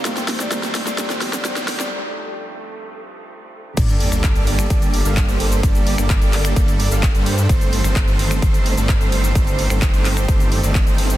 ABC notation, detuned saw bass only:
X:1
M:4/4
L:1/16
Q:1/4=129
K:Gm
V:1 name="Detuned saw bass" clef=bass
z16 | z16 | G,,,3 G,,,2 G,,,3 G,,,3 G,,,2 G,,,3 | z3 G,,,2 G,,,3 G,,,3 G,,,2 G,,3 |
G,,,3 G,,,2 G,,,3 G,,,3 G,,,2 G,,,3 | G,,,3 G,,,2 G,,,3 z3 G,,,2 G,,,3 |]